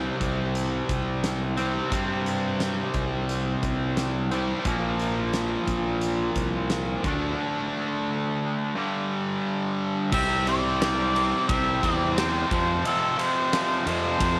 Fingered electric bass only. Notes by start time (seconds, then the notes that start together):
0.20 C2
0.89 C2
1.92 G2
2.94 C2
3.62 C2
4.64 A#1
5.67 A#1
6.35 C2
7.03 D2
10.12 C2
11.48 C2
11.83 E2
12.51 F2
13.86 F2
14.20 F2